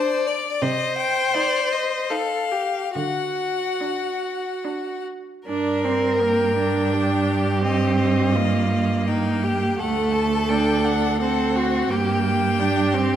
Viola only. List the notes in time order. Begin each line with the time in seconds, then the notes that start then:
Already playing: D4
1.35 D#4
2.11 D#4
3.81 D4
4.65 D4
5.48 D4
5.84 C4
6.21 A#3
6.57 D4
7.64 C4
8.36 A#3
8.72 A#3
9.79 A3
10.50 D4
11.22 C4
11.91 A#3
12.60 D4
12.94 C4